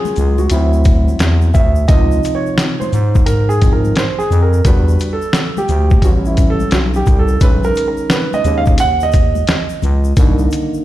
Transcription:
Already playing: F#3 C#4 F4 G#4
0.05 high conga, shaker
0.16 C#2, high conga, low conga, shaker
0.18 shaker
0.38 F#4, high conga, shaker
0.50 D2 F#3 C4 E4, closed hi-hat, shaker
0.73 shaker
0.84 kick, closed hi-hat, shaker
1.08 high conga, shaker
1.19 E2, snare, closed hi-hat, shaker
1.41 shaker
1.54 D2 E5, kick, low conga, shaker
1.75 shaker
1.88 C#2 C3 F3 D#4 D#5, kick, closed hi-hat, shaker
2.12 shaker
2.23 closed hi-hat, shaker
2.35 C#5
2.46 shaker
2.58 snare, closed hi-hat, shaker
2.80 C5, high conga, shaker
2.93 G#2, high conga, low conga, shaker
3.15 kick, high conga, shaker
3.26 A#4, closed hi-hat, shaker
3.49 G#4, shaker
3.60 F3 C4 D#4, kick, closed hi-hat, shaker
3.73 A#4
3.85 high conga, shaker
3.96 C5, snare, closed hi-hat, shaker
4.18 G#4, shaker
4.31 F2, low conga, shaker
4.43 A#4
4.53 shaker
4.65 E2 G3 D4 F#4 B4, kick, closed hi-hat, shaker
4.88 shaker
4.99 closed hi-hat, shaker
5.13 A4
5.22 shaker
5.33 snare, closed hi-hat, shaker
5.57 G4, high conga, shaker
5.68 D2, high conga, low conga, shaker
5.70 shaker
5.90 kick, high conga, shaker
6.02 A1 G3 B3 C#4 F#4, kick, closed hi-hat, shaker
6.25 E4, shaker
6.37 kick, closed hi-hat, low conga, shaker
6.50 A4
6.60 high conga, shaker
6.71 B1 F#4, snare, closed hi-hat, shaker
6.94 G4, shaker
7.06 C2, kick, low conga, shaker
7.19 A4
7.28 shaker
7.41 B1 D#3 G#3 C#4 B4, kick, closed hi-hat, shaker
7.63 A#4, shaker
7.75 closed hi-hat, shaker
7.77 shaker
7.88 A#4
7.97 shaker
8.10 B4, snare, closed hi-hat, shaker
8.33 D#5, high conga, shaker
8.44 D#2 D#3 G#3 C#4, high conga, low conga, shaker
8.58 F5
8.66 kick, high conga, shaker
8.78 F#5, closed hi-hat, shaker
9.00 D#5, shaker
9.12 closed hi-hat, shaker
9.14 kick, shaker
9.35 high conga, shaker
9.47 snare, closed hi-hat, shaker
9.69 shaker
9.82 C#2, low conga, shaker
10.04 shaker
10.17 C2 D3 D#3 A#3, kick, closed hi-hat, shaker
10.38 shaker
10.51 closed hi-hat, shaker
10.53 shaker
10.74 shaker

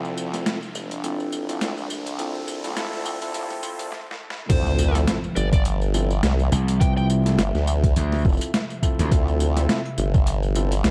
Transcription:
Already playing: D2 C3 F3 C4 D4 E4 F4 A4, riser
0.05 tambourine
0.18 tambourine
0.34 C4 E4 F4 A4, snare, closed hi-hat, tambourine
0.46 snare, closed hi-hat, tambourine
0.63 tambourine
0.75 G1, tambourine
0.91 closed hi-hat, tambourine
1.04 C4 E4 F4 A4, closed hi-hat, tambourine
1.20 tambourine
1.32 tambourine
1.49 C4 E4 F4 A4, closed hi-hat, tambourine
1.61 C2, snare, closed hi-hat, tambourine
1.78 tambourine
1.90 C2, tambourine
2.06 closed hi-hat, tambourine
2.19 C4 E4 F4 A4, closed hi-hat, tambourine
2.35 tambourine
2.48 tambourine
2.64 C4 E4 F4 A4, snare, closed hi-hat, tambourine
2.67 snare
2.70 snare
2.73 C4 E4 F4 A4, snare
2.77 G1, snare, closed hi-hat, tambourine
2.93 D2, snare, tambourine
3.05 closed hi-hat, tambourine
3.22 C4 E4 F4 A4, closed hi-hat, tambourine
3.34 C2 C4 E4 F4 A4, closed hi-hat, tambourine
3.50 snare, tambourine
3.63 C4 E4 F4 A4, closed hi-hat, tambourine
3.79 C2, closed hi-hat, tambourine
3.92 snare
4.11 snare
4.30 snare
4.50 D2 C3 F3 C4 E4 F4 A4 C5 E5, kick, closed hi-hat, crash, tambourine, impact
4.66 tambourine
4.79 tambourine
4.95 C4 E4 F4 A4, snare, closed hi-hat, tambourine
5.07 snare, closed hi-hat, tambourine
5.24 tambourine
5.36 G1 D5, tambourine
5.53 D5, kick, closed hi-hat, tambourine
5.65 closed hi-hat, tambourine
5.82 tambourine
5.94 C4 E4 F4 A4, tambourine
6.10 tambourine
6.23 C2, snare, closed hi-hat, tambourine
6.39 tambourine
6.52 C2, tambourine
6.68 closed hi-hat, tambourine
6.80 C4 E4 F4 B4 G5, kick, closed hi-hat, tambourine
6.97 G5, tambourine
7.10 tambourine
7.26 C4 E4 F4 A4, snare, closed hi-hat, tambourine
7.29 snare
7.32 snare
7.36 G1, snare
7.39 snare, closed hi-hat, tambourine
7.43 snare
7.47 snare
7.51 D2, snare
7.55 snare, tambourine
7.67 tambourine
7.84 kick, closed hi-hat
7.96 D2, closed hi-hat, tambourine
8.12 snare, tambourine
8.15 tambourine
8.19 tambourine
8.22 F1, kick, tambourine
8.25 C4 E4 F4 A4, tambourine
8.29 tambourine
8.33 tambourine
8.37 tambourine
8.41 closed hi-hat, tambourine
8.54 snare, closed hi-hat, tambourine
8.70 tambourine
8.83 C4 E4 F4 A4, kick, tambourine
8.99 D2, snare, closed hi-hat, tambourine
9.11 D2 C4 E4 F4 A4, kick, closed hi-hat, tambourine
9.28 tambourine
9.40 tambourine
9.57 C4 E4 F4 A4, snare, closed hi-hat, tambourine
9.69 snare, closed hi-hat, tambourine
9.85 tambourine
9.98 G1, tambourine
10.14 kick, tambourine
10.27 closed hi-hat, tambourine
10.43 tambourine
10.55 C4 E4 F4 A4, tambourine
10.72 closed hi-hat, tambourine
10.84 C2, snare, closed hi-hat, tambourine

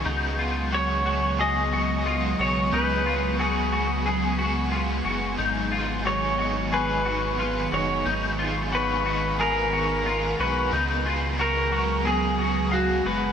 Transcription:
Already playing: G#3 B3
0.04 C#2 C#3 F#3 G#3 B3 D#4 F#4 G#4
0.38 F4 F#4 G#4
0.42 B3
0.71 G#3 B3 F#4 G#4 C#5
1.04 F#4 G#4
1.08 B3
1.38 C#3 G#3 B3 F#4 G#4 D#5
1.71 B3 F#4 G#4
2.05 G#3 B3 F4 F#4 G#4
2.38 B1 B3 F#4 G#4 C#5
2.72 C#2 C#3 G#3 B3 D#4 F#4 G#4 B4
3.05 B3 F4 F#4 G#4
3.38 G#3 B3 F#4 G#4
3.72 B3 F#4 G#4
4.05 C#3 G#3 B3 F#4 G#4
4.38 B3 F#4 G#4
4.71 G#3 B3 F4 F#4 G#4
5.05 F#1 B3 F#4 G#4
5.38 G#1 G#2 D#3 F#3 B3 D#4 G#4
5.71 F#3 B3 D#4 F4 G#4
6.05 F#3 B3 D#4 F#4 G#4 C#5
6.38 B3 D#4 F#4 G#4
6.42 F#3
6.71 G#2 D#3 F#3 B3 D#4 G#4 B4
7.05 F#3 B3 D#4 F#4 G#4
7.38 F#3 B3 D#4 F4
7.42 G#4
7.72 F#1 F#3 B3 D#4 F#4 G#4 C#5
8.05 G#1 G#2 D#3 F#3 B3 D#4 G#4 F5
8.38 B3 D#4 F4 G#4
8.42 F#3
8.71 F#3 B3 D#4 F#4 G#4 B4
9.05 F#3 B3 D#4 F#4 G#4
9.38 G#2 D#3 F#3 B3 D#4 G#4 A#4
9.71 F#3 B3 D#4 F#4 G#4
10.04 F#3 B3 D#4 F4 G#4
10.38 B1 F#3 B3 D#4 F#4 G#4 B4
10.71 C#2 C#3 F#3 G#3 B3 D#4 F#4 G#4
11.04 B3 F4 F#4 G#4
11.37 G#3 B3 F#4 A#4
11.41 G#4
11.72 B3 F#4 G#4
12.05 C#3 G#3 B3 F#4 G#4
12.38 B3 F#4 G#4
12.71 G#3 B3 F#4 G#4 F5
13.05 F#1 B3 F#4 G#4 B4

